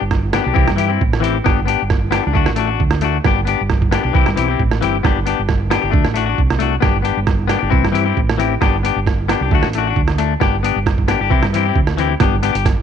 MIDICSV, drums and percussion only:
0, 0, Header, 1, 2, 480
1, 0, Start_track
1, 0, Key_signature, 1, "major"
1, 0, Tempo, 448096
1, 1558, Time_signature, 4, 2, 24, 8
1, 13735, End_track
2, 0, Start_track
2, 0, Title_t, "Drums"
2, 117, Note_on_c, 9, 36, 57
2, 117, Note_on_c, 9, 37, 57
2, 224, Note_off_c, 9, 36, 0
2, 224, Note_off_c, 9, 37, 0
2, 355, Note_on_c, 9, 37, 67
2, 355, Note_on_c, 9, 42, 42
2, 462, Note_off_c, 9, 37, 0
2, 462, Note_off_c, 9, 42, 0
2, 599, Note_on_c, 9, 36, 79
2, 707, Note_off_c, 9, 36, 0
2, 723, Note_on_c, 9, 37, 61
2, 831, Note_off_c, 9, 37, 0
2, 839, Note_on_c, 9, 42, 49
2, 946, Note_off_c, 9, 42, 0
2, 1085, Note_on_c, 9, 36, 69
2, 1192, Note_off_c, 9, 36, 0
2, 1215, Note_on_c, 9, 37, 57
2, 1322, Note_off_c, 9, 37, 0
2, 1327, Note_on_c, 9, 42, 46
2, 1434, Note_off_c, 9, 42, 0
2, 1561, Note_on_c, 9, 37, 57
2, 1564, Note_on_c, 9, 36, 90
2, 1668, Note_off_c, 9, 37, 0
2, 1671, Note_off_c, 9, 36, 0
2, 1801, Note_on_c, 9, 42, 49
2, 1908, Note_off_c, 9, 42, 0
2, 2036, Note_on_c, 9, 37, 59
2, 2042, Note_on_c, 9, 36, 58
2, 2143, Note_off_c, 9, 37, 0
2, 2150, Note_off_c, 9, 36, 0
2, 2272, Note_on_c, 9, 37, 65
2, 2272, Note_on_c, 9, 42, 48
2, 2379, Note_off_c, 9, 37, 0
2, 2379, Note_off_c, 9, 42, 0
2, 2520, Note_on_c, 9, 36, 68
2, 2627, Note_off_c, 9, 36, 0
2, 2636, Note_on_c, 9, 37, 66
2, 2744, Note_off_c, 9, 37, 0
2, 2744, Note_on_c, 9, 42, 49
2, 2852, Note_off_c, 9, 42, 0
2, 2999, Note_on_c, 9, 36, 63
2, 3106, Note_off_c, 9, 36, 0
2, 3113, Note_on_c, 9, 37, 63
2, 3220, Note_off_c, 9, 37, 0
2, 3225, Note_on_c, 9, 42, 42
2, 3333, Note_off_c, 9, 42, 0
2, 3476, Note_on_c, 9, 37, 60
2, 3481, Note_on_c, 9, 36, 82
2, 3583, Note_off_c, 9, 37, 0
2, 3588, Note_off_c, 9, 36, 0
2, 3718, Note_on_c, 9, 42, 46
2, 3825, Note_off_c, 9, 42, 0
2, 3959, Note_on_c, 9, 37, 53
2, 3962, Note_on_c, 9, 36, 59
2, 4066, Note_off_c, 9, 37, 0
2, 4069, Note_off_c, 9, 36, 0
2, 4091, Note_on_c, 9, 36, 57
2, 4198, Note_off_c, 9, 36, 0
2, 4204, Note_on_c, 9, 37, 66
2, 4204, Note_on_c, 9, 42, 50
2, 4311, Note_off_c, 9, 37, 0
2, 4311, Note_off_c, 9, 42, 0
2, 4443, Note_on_c, 9, 36, 79
2, 4550, Note_off_c, 9, 36, 0
2, 4565, Note_on_c, 9, 37, 58
2, 4672, Note_off_c, 9, 37, 0
2, 4685, Note_on_c, 9, 42, 51
2, 4792, Note_off_c, 9, 42, 0
2, 4922, Note_on_c, 9, 36, 55
2, 5029, Note_off_c, 9, 36, 0
2, 5050, Note_on_c, 9, 37, 59
2, 5157, Note_off_c, 9, 37, 0
2, 5167, Note_on_c, 9, 42, 47
2, 5274, Note_off_c, 9, 42, 0
2, 5403, Note_on_c, 9, 36, 81
2, 5406, Note_on_c, 9, 37, 65
2, 5510, Note_off_c, 9, 36, 0
2, 5513, Note_off_c, 9, 37, 0
2, 5641, Note_on_c, 9, 42, 52
2, 5748, Note_off_c, 9, 42, 0
2, 5877, Note_on_c, 9, 37, 55
2, 5881, Note_on_c, 9, 36, 58
2, 5984, Note_off_c, 9, 37, 0
2, 5988, Note_off_c, 9, 36, 0
2, 6119, Note_on_c, 9, 37, 69
2, 6119, Note_on_c, 9, 42, 46
2, 6226, Note_off_c, 9, 37, 0
2, 6226, Note_off_c, 9, 42, 0
2, 6357, Note_on_c, 9, 36, 83
2, 6464, Note_off_c, 9, 36, 0
2, 6476, Note_on_c, 9, 37, 60
2, 6583, Note_off_c, 9, 37, 0
2, 6595, Note_on_c, 9, 42, 48
2, 6702, Note_off_c, 9, 42, 0
2, 6837, Note_on_c, 9, 36, 54
2, 6944, Note_off_c, 9, 36, 0
2, 6967, Note_on_c, 9, 37, 62
2, 7070, Note_on_c, 9, 42, 40
2, 7074, Note_off_c, 9, 37, 0
2, 7177, Note_off_c, 9, 42, 0
2, 7310, Note_on_c, 9, 37, 63
2, 7314, Note_on_c, 9, 36, 90
2, 7417, Note_off_c, 9, 37, 0
2, 7421, Note_off_c, 9, 36, 0
2, 7550, Note_on_c, 9, 42, 43
2, 7657, Note_off_c, 9, 42, 0
2, 7787, Note_on_c, 9, 37, 62
2, 7790, Note_on_c, 9, 36, 65
2, 7894, Note_off_c, 9, 37, 0
2, 7897, Note_off_c, 9, 36, 0
2, 8028, Note_on_c, 9, 37, 58
2, 8028, Note_on_c, 9, 42, 45
2, 8136, Note_off_c, 9, 37, 0
2, 8136, Note_off_c, 9, 42, 0
2, 8270, Note_on_c, 9, 36, 81
2, 8377, Note_off_c, 9, 36, 0
2, 8404, Note_on_c, 9, 37, 57
2, 8511, Note_off_c, 9, 37, 0
2, 8517, Note_on_c, 9, 42, 46
2, 8624, Note_off_c, 9, 42, 0
2, 8752, Note_on_c, 9, 36, 56
2, 8859, Note_off_c, 9, 36, 0
2, 8886, Note_on_c, 9, 37, 64
2, 8993, Note_off_c, 9, 37, 0
2, 8995, Note_on_c, 9, 42, 46
2, 9102, Note_off_c, 9, 42, 0
2, 9230, Note_on_c, 9, 36, 80
2, 9230, Note_on_c, 9, 37, 67
2, 9337, Note_off_c, 9, 36, 0
2, 9337, Note_off_c, 9, 37, 0
2, 9477, Note_on_c, 9, 42, 51
2, 9584, Note_off_c, 9, 42, 0
2, 9711, Note_on_c, 9, 36, 63
2, 9719, Note_on_c, 9, 37, 56
2, 9818, Note_off_c, 9, 36, 0
2, 9826, Note_off_c, 9, 37, 0
2, 9955, Note_on_c, 9, 37, 71
2, 9955, Note_on_c, 9, 42, 47
2, 10062, Note_off_c, 9, 37, 0
2, 10062, Note_off_c, 9, 42, 0
2, 10190, Note_on_c, 9, 36, 81
2, 10297, Note_off_c, 9, 36, 0
2, 10312, Note_on_c, 9, 37, 61
2, 10419, Note_off_c, 9, 37, 0
2, 10427, Note_on_c, 9, 42, 51
2, 10534, Note_off_c, 9, 42, 0
2, 10671, Note_on_c, 9, 36, 65
2, 10778, Note_off_c, 9, 36, 0
2, 10794, Note_on_c, 9, 37, 56
2, 10901, Note_off_c, 9, 37, 0
2, 10909, Note_on_c, 9, 42, 42
2, 11016, Note_off_c, 9, 42, 0
2, 11153, Note_on_c, 9, 36, 75
2, 11155, Note_on_c, 9, 37, 58
2, 11260, Note_off_c, 9, 36, 0
2, 11262, Note_off_c, 9, 37, 0
2, 11402, Note_on_c, 9, 42, 54
2, 11510, Note_off_c, 9, 42, 0
2, 11635, Note_on_c, 9, 36, 62
2, 11640, Note_on_c, 9, 37, 67
2, 11742, Note_off_c, 9, 36, 0
2, 11747, Note_off_c, 9, 37, 0
2, 11762, Note_on_c, 9, 36, 59
2, 11869, Note_off_c, 9, 36, 0
2, 11873, Note_on_c, 9, 37, 58
2, 11873, Note_on_c, 9, 42, 45
2, 11980, Note_off_c, 9, 37, 0
2, 11980, Note_off_c, 9, 42, 0
2, 12114, Note_on_c, 9, 36, 68
2, 12221, Note_off_c, 9, 36, 0
2, 12240, Note_on_c, 9, 37, 60
2, 12347, Note_off_c, 9, 37, 0
2, 12362, Note_on_c, 9, 42, 46
2, 12469, Note_off_c, 9, 42, 0
2, 12592, Note_on_c, 9, 36, 68
2, 12699, Note_off_c, 9, 36, 0
2, 12717, Note_on_c, 9, 37, 59
2, 12824, Note_off_c, 9, 37, 0
2, 12837, Note_on_c, 9, 42, 39
2, 12944, Note_off_c, 9, 42, 0
2, 13069, Note_on_c, 9, 37, 64
2, 13069, Note_on_c, 9, 42, 48
2, 13073, Note_on_c, 9, 36, 85
2, 13176, Note_off_c, 9, 37, 0
2, 13176, Note_off_c, 9, 42, 0
2, 13180, Note_off_c, 9, 36, 0
2, 13315, Note_on_c, 9, 42, 54
2, 13422, Note_off_c, 9, 42, 0
2, 13447, Note_on_c, 9, 42, 47
2, 13554, Note_off_c, 9, 42, 0
2, 13555, Note_on_c, 9, 36, 66
2, 13559, Note_on_c, 9, 37, 56
2, 13559, Note_on_c, 9, 42, 50
2, 13663, Note_off_c, 9, 36, 0
2, 13666, Note_off_c, 9, 37, 0
2, 13666, Note_off_c, 9, 42, 0
2, 13735, End_track
0, 0, End_of_file